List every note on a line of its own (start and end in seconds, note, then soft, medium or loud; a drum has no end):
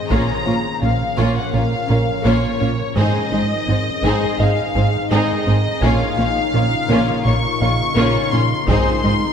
0.00 0.11 D#3 medium
0.00 0.11 G#4 medium
0.00 0.11 C5 medium
0.00 0.11 D#5 medium
0.00 1.15 C6 soft
0.10 0.18 A#1 medium
0.10 0.19 A#2 medium
0.10 0.32 A#2 medium
0.10 2.97 F3 medium
0.10 0.32 A#3 medium
0.10 0.44 A#3 medium
0.10 0.44 C#4 medium
0.10 2.97 C#4 medium
0.10 0.44 F4 medium
0.10 2.97 A#4 medium
0.10 0.43 C#5 medium
0.10 0.82 A#5 medium
0.10 taiko soft
0.46 0.54 A#1 soft
0.46 0.55 A#2 soft
0.46 0.68 A#3 medium
0.46 0.55 A#3 soft
0.46 0.55 C#4 soft
0.46 0.54 F4 soft
0.46 0.68 F4 medium
0.46 0.54 C#5 soft
0.82 0.90 A#1 soft
0.82 1.04 A#2 medium
0.82 0.91 A#2 soft
0.82 0.91 A#3 soft
0.82 1.03 C#4 medium
0.82 0.91 C#4 soft
0.82 0.90 F4 soft
0.82 0.90 C#5 soft
0.82 1.35 F5 medium
1.16 1.26 A#1 medium
1.16 1.39 A#2 medium
1.16 1.26 A#2 medium
1.16 1.39 A#3 medium
1.16 1.51 A#3 medium
1.16 1.52 C#4 medium
1.16 1.50 F4 medium
1.16 1.50 C#5 medium
1.37 1.54 F#5 medium
1.53 1.62 A#1 soft
1.53 1.62 A#2 soft
1.53 1.75 A#2 medium
1.53 1.62 A#3 soft
1.53 1.62 C#4 soft
1.53 1.61 F4 soft
1.53 1.75 A#4 medium
1.53 1.61 C#5 soft
1.53 2.24 F5 medium
1.88 1.97 A#1 soft
1.88 1.98 A#2 soft
1.88 2.11 A#2 medium
1.88 1.98 A#3 soft
1.88 1.97 C#4 medium
1.88 4.01 C#4 soft
1.88 1.96 F4 soft
1.88 2.11 A#4 soft
1.88 4.01 A#4 soft
1.88 1.97 C#5 soft
2.25 2.33 A#1 medium
2.25 2.47 A#2 medium
2.25 2.33 A#2 medium
2.25 2.46 A#3 medium
2.25 2.58 A#3 medium
2.25 2.59 C#4 medium
2.25 2.58 F4 medium
2.25 2.59 C#5 medium
2.25 2.97 C#5 medium
2.61 2.69 A#1 soft
2.61 2.69 A#2 soft
2.61 2.83 A#2 medium
2.61 2.70 A#3 soft
2.61 2.82 C#4 medium
2.61 2.70 C#4 soft
2.61 2.69 F4 soft
2.61 2.69 C#5 medium
2.96 3.04 G#1 medium
2.96 3.05 G#2 medium
2.96 3.18 G#2 medium
2.96 5.82 D#3 medium
2.96 3.17 G#3 medium
2.96 3.30 C4 medium
2.96 8.68 D#4 medium
2.96 3.30 D#4 medium
2.96 5.82 G#4 medium
2.96 3.30 G#4 medium
2.96 3.30 C5 medium
2.96 4.37 D#5 medium
3.32 3.40 G#1 medium
3.32 3.41 G#2 soft
3.32 3.54 G#3 medium
3.32 3.40 C4 soft
3.32 3.53 D#4 medium
3.32 3.40 D#4 soft
3.32 3.41 G#4 soft
3.32 3.41 C5 soft
3.67 3.75 G#1 soft
3.67 3.76 G#2 soft
3.67 3.90 G#2 medium
3.67 3.89 C4 medium
3.67 3.76 C4 soft
3.67 3.77 D#4 soft
3.67 3.77 G#4 soft
3.67 3.77 C5 soft
4.03 4.11 G#1 medium
4.03 4.12 G#2 medium
4.03 4.26 G#2 medium
4.03 4.25 G#3 medium
4.03 4.37 C4 medium
4.03 4.37 D#4 medium
4.03 4.37 G#4 medium
4.03 4.37 C5 medium
4.39 4.47 G#1 medium
4.39 4.61 G#2 medium
4.39 4.48 G#2 medium
4.39 4.48 C4 medium
4.39 4.48 D#4 soft
4.39 4.61 G#4 medium
4.39 4.49 G#4 soft
4.39 4.48 C5 soft
4.39 6.50 D#5 soft
4.39 5.11 F5 medium
4.75 4.83 G#1 medium
4.75 4.84 G#2 medium
4.75 4.97 G#2 medium
4.75 4.83 C4 medium
4.75 4.83 D#4 soft
4.75 4.97 G#4 soft
4.75 4.85 G#4 soft
4.75 4.85 C5 soft
5.10 5.18 G#1 medium
5.10 5.33 G#2 medium
5.10 5.20 G#2 medium
5.10 5.32 G#3 medium
5.10 5.44 C4 medium
5.10 5.44 D#4 medium
5.10 5.45 G#4 medium
5.10 5.45 C5 medium
5.10 5.81 D#5 medium
5.47 5.55 G#1 soft
5.47 5.68 G#2 medium
5.47 5.55 G#2 soft
5.47 5.68 C4 medium
5.47 5.55 C4 medium
5.47 5.55 D#4 medium
5.47 5.56 G#4 medium
5.47 5.56 C5 medium
5.82 5.90 A#1 medium
5.82 5.90 A#2 medium
5.82 6.04 A#2 medium
5.82 8.68 C#3 medium
5.82 6.04 A#3 medium
5.82 6.16 A#3 medium
5.82 6.16 C#4 medium
5.82 8.68 F4 medium
5.82 6.16 F4 medium
5.82 9.33 A#4 medium
5.82 6.16 C#5 medium
5.82 7.25 F5 loud
5.82 7.92 G#5 medium
5.82 taiko medium
6.18 6.26 A#1 medium
6.18 6.26 A#2 soft
6.18 6.27 A#3 soft
6.18 6.40 A#3 medium
6.18 6.27 C#4 soft
6.18 6.39 F4 medium
6.18 6.27 F4 medium
6.18 6.27 C#5 medium
6.54 6.62 A#1 soft
6.54 6.75 A#2 medium
6.54 6.62 A#2 soft
6.54 6.63 A#3 soft
6.54 6.76 C#4 medium
6.54 6.62 C#4 soft
6.54 6.62 F4 soft
6.54 6.62 C#5 soft
6.89 6.98 A#1 medium
6.89 7.11 A#2 medium
6.89 6.98 A#2 medium
6.89 7.11 A#3 medium
6.89 7.23 A#3 medium
6.89 7.23 C#4 medium
6.89 7.23 F4 medium
6.89 7.23 C#5 medium
7.25 7.33 A#1 medium
7.25 7.33 A#2 soft
7.25 7.47 A#2 medium
7.25 7.34 A#3 soft
7.25 7.34 C#4 soft
7.25 7.35 F4 soft
7.25 7.47 A#4 medium
7.25 7.34 C#5 soft
7.25 8.31 C#6 loud
7.61 7.69 A#1 soft
7.61 7.69 A#2 medium
7.61 7.83 A#2 medium
7.61 7.70 A#3 soft
7.61 7.69 C#4 soft
7.61 7.70 F4 medium
7.61 7.82 A#4 medium
7.61 7.70 C#5 medium
7.61 9.33 F5 soft
7.96 8.04 A#1 medium
7.96 8.04 A#2 medium
7.96 8.18 A#2 medium
7.96 8.30 A#3 medium
7.96 8.18 A#3 medium
7.96 8.30 C#4 medium
7.96 8.30 F4 medium
7.96 8.30 C#5 medium
8.32 8.40 A#1 soft
8.32 8.41 A#2 soft
8.32 8.54 A#2 medium
8.32 8.41 A#3 soft
8.32 8.41 C#4 soft
8.32 8.54 C#4 soft
8.32 8.42 F4 medium
8.32 8.42 C#5 medium
8.32 8.67 C6 medium
8.68 8.76 G#1 medium
8.68 8.76 G#2 medium
8.68 8.90 G#2 medium
8.68 9.33 D#3 medium
8.68 8.90 G#3 medium
8.68 9.01 C4 medium
8.68 9.33 C4 medium
8.68 9.01 D#4 medium
8.68 9.33 G#4 medium
8.68 9.02 G#4 medium
8.68 9.02 C5 medium
8.68 9.33 C6 medium
8.68 taiko medium
9.03 9.11 G#1 medium
9.03 9.12 G#2 soft
9.03 9.25 G#3 medium
9.03 9.13 C4 soft
9.03 9.12 D#4 soft
9.03 9.26 D#4 medium
9.03 9.13 G#4 soft
9.03 9.13 C5 medium